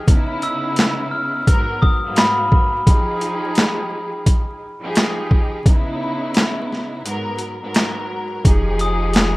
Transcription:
0.07 1.47 C#3 loud
0.07 1.46 B3 medium
0.07 1.48 D#4 medium
0.07 1.48 E4 loud
0.07 kick loud
0.07 closed hi-hat medium
0.42 0.74 E6 medium
0.42 closed hi-hat medium
0.76 snare loud
0.76 clap medium
0.76 closed hi-hat medium
1.11 1.31 F6 medium
1.46 1.98 G#2 loud
1.46 1.98 F#3 medium
1.46 1.99 B3 medium
1.46 1.99 A#4 loud
1.46 kick medium
1.46 closed hi-hat medium
1.82 2.13 D#6 medium
1.82 kick medium
2.04 2.81 G#2 loud
2.04 2.82 F#3 medium
2.04 2.83 A#3 loud
2.04 2.82 B3 medium
2.16 2.48 B5 medium
2.16 snare loud
2.16 clap medium
2.16 closed hi-hat medium
2.52 kick medium
2.86 4.63 F3 loud
2.86 4.64 D#4 loud
2.86 4.64 G4 medium
2.86 4.65 G#4 loud
2.86 kick loud
2.86 closed hi-hat medium
3.21 closed hi-hat medium
3.55 snare loud
3.55 clap medium
3.55 closed hi-hat medium
4.26 kick medium
4.26 closed hi-hat medium
4.82 5.60 F3 medium
4.82 5.61 D#4 medium
4.82 5.61 G4 medium
4.82 5.62 G#4 loud
4.95 snare loud
4.95 clap medium
4.95 closed hi-hat medium
5.31 kick medium
5.65 7.05 C#3 loud
5.65 7.04 B3 medium
5.65 7.06 D#4 medium
5.65 7.06 E4 loud
5.65 kick loud
5.65 closed hi-hat medium
6.34 snare loud
6.34 clap medium
6.34 closed hi-hat medium
6.72 snare soft
7.04 7.56 G#2 loud
7.04 7.57 F#3 medium
7.04 7.57 B3 medium
7.04 7.57 A#4 loud
7.04 closed hi-hat medium
7.39 closed hi-hat soft
7.62 8.39 G#2 medium
7.62 8.40 F#3 medium
7.62 8.40 B3 medium
7.62 8.41 A#4 loud
7.74 snare loud
7.74 clap medium
7.74 closed hi-hat medium
8.44 9.37 F1 loud
8.44 9.37 F3 loud
8.44 9.37 D#4 loud
8.44 9.37 G4 medium
8.44 9.37 G#4 loud
8.44 kick loud
8.44 closed hi-hat medium
8.79 9.12 D#6 medium
8.79 closed hi-hat medium
9.13 snare loud
9.13 clap medium
9.13 closed hi-hat medium

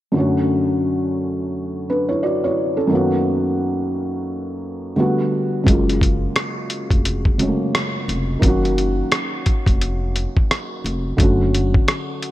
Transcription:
0.12 2.85 F#2 medium
0.12 2.86 D3 medium
0.12 2.87 F#3 medium
0.16 2.88 A3 medium
0.16 1.85 C#4 medium
0.16 1.86 F#4 medium
1.90 2.09 D4 soft
1.90 2.08 B4 medium
2.09 2.22 E4 medium
2.09 2.21 C#5 medium
2.23 2.42 F#4 soft
2.23 2.42 D5 medium
2.44 2.77 E4 medium
2.44 2.76 C#5 medium
2.77 3.10 C#4 soft
2.77 3.10 A4 medium
2.87 4.92 F#2 medium
2.87 4.93 D#3 medium
2.87 4.94 F#3 medium
2.92 4.94 A#3 medium
2.92 4.95 B3 medium
2.92 4.96 F#4 medium
4.96 5.66 D3 medium
4.96 5.66 G3 medium
4.96 5.67 A3 medium
4.96 5.67 B3 medium
4.96 5.68 F#4 medium
5.64 6.25 F#1 loud
5.64 7.34 C#3 medium
5.64 7.35 F#3 medium
5.64 7.36 G#3 medium
5.64 kick loud
5.68 7.37 A#3 medium
5.68 7.38 F4 medium
5.68 closed hi-hat medium
5.89 closed hi-hat soft
6.01 kick medium
6.01 closed hi-hat medium
6.36 cross-stick loud
6.36 closed hi-hat medium
6.70 closed hi-hat medium
6.91 7.49 F1 medium
6.91 kick medium
6.91 closed hi-hat soft
7.05 closed hi-hat medium
7.25 kick medium
7.38 8.42 C#3 medium
7.38 8.40 F#3 medium
7.38 8.43 G#3 soft
7.38 7.48 A3 soft
7.38 8.44 C#4 medium
7.38 closed hi-hat medium
7.47 8.42 A#3 soft
7.75 cross-stick loud
7.75 closed hi-hat medium
8.08 8.37 F1 medium
8.08 closed hi-hat medium
8.39 9.01 F#1 loud
8.39 11.13 D#3 medium
8.39 11.14 F#3 medium
8.39 11.15 A#3 medium
8.39 kick loud
8.39 closed hi-hat medium
8.45 11.16 C#4 medium
8.45 11.17 F#4 medium
8.65 closed hi-hat soft
8.78 closed hi-hat medium
9.12 cross-stick loud
9.12 closed hi-hat medium
9.46 kick medium
9.46 closed hi-hat medium
9.66 10.25 F1 medium
9.66 kick medium
9.66 closed hi-hat soft
9.81 closed hi-hat medium
10.16 closed hi-hat medium
10.37 kick medium
10.51 cross-stick loud
10.51 closed hi-hat medium
10.84 11.13 F1 medium
10.84 closed hi-hat medium
11.17 11.77 F#1 loud
11.17 12.31 D3 medium
11.17 12.31 F#3 medium
11.17 12.31 A3 medium
11.17 kick loud
11.17 closed hi-hat medium
11.22 12.31 C#4 medium
11.22 12.31 F#4 medium
11.55 closed hi-hat medium
11.74 kick medium
11.88 cross-stick loud
11.88 closed hi-hat medium
12.22 closed hi-hat medium

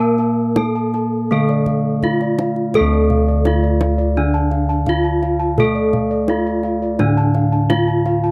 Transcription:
0.00 0.53 A#2 medium
0.00 1.32 A#3 medium
0.00 0.57 A#4 medium
0.00 2.00 A#4 medium
0.00 0.18 A5 medium
0.18 0.41 A5 medium
0.18 kendang slap soft
0.56 0.65 D#4 soft
0.56 1.31 A4 medium
0.56 0.74 A5 medium
0.56 kendang slap soft
0.56 kendang high medium
0.56 kendang low soft
0.75 0.93 A5 medium
0.94 1.15 A5 medium
0.94 kendang slap soft
1.31 3.42 D3 medium
1.31 2.75 A3 medium
1.31 2.05 A4 medium
1.31 1.52 F5 medium
1.49 1.70 D5 medium
1.49 kendang slap soft
1.66 1.88 F5 soft
1.66 kendang slap soft
1.66 kendang low medium
2.03 2.12 D#4 soft
2.03 2.75 F4 medium
2.03 2.24 F5 medium
2.03 kendang slap soft
2.03 kendang low medium
2.21 2.42 D5 medium
2.21 kendang slap soft
2.39 2.60 F5 medium
2.39 kendang slap soft
2.39 kendang high medium
2.56 kendang slap soft
2.74 4.17 A3 medium
2.74 3.46 A4 loud
2.74 4.83 A4 medium
2.74 kendang high soft
2.74 kendang low medium
2.80 6.98 D2 loud
2.93 3.13 D5 medium
3.10 3.30 F5 medium
3.10 kendang slap soft
3.10 kendang low medium
3.28 3.48 D5 medium
3.45 3.54 D#4 medium
3.45 4.17 F4 medium
3.45 3.66 F5 medium
3.45 kendang high medium
3.63 3.83 D5 medium
3.81 4.01 F5 medium
3.81 kendang slap soft
3.81 kendang high medium
3.98 4.18 D5 medium
4.17 5.58 D3 medium
4.17 4.88 D4 medium
4.34 4.54 A5 medium
4.51 4.71 F5 medium
4.51 kendang slap soft
4.69 4.89 A5 medium
4.86 4.96 D#4 soft
4.86 5.59 F4 medium
4.86 5.07 F5 medium
4.86 kendang low medium
5.04 5.24 A5 medium
5.22 5.42 F5 medium
5.22 kendang slap soft
5.40 5.60 A5 medium
5.58 7.00 A3 medium
5.58 7.66 A4 medium
5.58 6.30 A4 medium
5.58 kendang low medium
5.75 5.95 D5 medium
5.93 6.13 F5 medium
5.93 kendang slap soft
5.93 kendang low medium
6.11 6.31 D5 medium
6.28 6.37 D#4 medium
6.28 7.00 F4 medium
6.28 6.49 F5 medium
6.28 kendang high medium
6.47 6.66 D5 medium
6.63 6.84 F5 medium
6.63 kendang slap soft
6.82 7.02 D5 medium
6.99 8.31 A2 medium
6.99 8.31 D3 medium
6.99 7.70 D4 medium
6.99 kendang high medium
7.17 7.37 A5 medium
7.35 7.54 F5 medium
7.35 kendang slap soft
7.52 7.72 A5 medium
7.70 7.78 D#4 soft
7.70 8.31 F4 loud
7.70 7.90 F5 medium
7.70 kendang high medium
7.70 kendang low medium
7.88 8.07 A5 medium
8.06 8.25 F5 medium
8.06 kendang slap soft
8.24 8.31 A5 medium

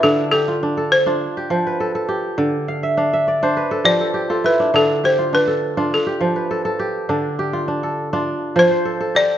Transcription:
0.00 1.25 D3 medium
0.00 0.62 D4 medium
0.00 0.54 E4 medium
0.00 0.48 F4 medium
0.00 0.32 G4 medium
0.00 0.77 A4 medium
0.00 0.16 A4 medium
0.00 0.38 B4 medium
0.00 0.19 C5 medium
0.31 1.37 G4 medium
0.31 0.87 A4 medium
0.48 1.06 F4 medium
0.63 1.06 D4 medium
0.77 1.80 A4 medium
0.92 1.46 C5 medium
1.06 2.74 D4 medium
1.06 2.58 F4 medium
1.37 2.08 G4 medium
1.50 2.43 F3 medium
1.67 2.90 B4 medium
1.80 1.95 A4 medium
1.95 3.27 A4 medium
2.09 3.50 G4 medium
2.38 3.61 D3 medium
2.68 2.97 F5 medium
2.83 3.13 E5 medium
2.97 3.42 D4 medium
2.97 3.98 F5 medium
3.13 3.90 E5 medium
3.28 4.38 D5 medium
3.43 4.59 D4 medium
3.43 4.62 C5 medium
3.57 4.80 B4 medium
3.71 4.00 A4 medium
3.84 4.78 F3 medium
3.84 4.13 G4 medium
3.84 4.46 D5 medium
4.01 4.30 A4 medium
4.14 5.03 G4 medium
4.30 5.18 F4 medium
4.30 5.47 A4 medium
4.44 5.25 E4 medium
4.44 4.72 B4 medium
4.60 4.74 D4 medium
4.74 5.96 D3 medium
4.74 5.32 D4 medium
4.74 5.05 A4 medium
5.04 6.06 G4 medium
5.04 5.34 C5 medium
5.19 5.77 F4 medium
5.33 5.77 D4 medium
5.33 5.88 B4 medium
5.47 6.50 A4 medium
5.77 7.09 D4 medium
5.77 7.29 F4 medium
5.94 6.77 A4 medium
6.07 6.79 G4 medium
6.21 7.14 F3 medium
6.36 7.59 B4 soft
6.51 6.65 A4 medium
6.65 7.83 A4 medium
6.79 7.39 G4 medium
7.09 8.32 D3 medium
7.09 7.68 D4 medium
7.39 8.80 G4 medium
7.53 8.13 F4 medium
7.68 8.13 D4 medium
7.83 8.85 A4 medium
8.13 9.38 D4 medium
8.13 9.38 F4 medium
8.56 9.38 F3 medium
8.56 9.18 C5 medium
8.71 9.38 C5 medium
8.85 9.00 A4 medium
9.01 9.38 A4 medium
9.15 9.38 G4 medium
9.15 9.38 D5 medium

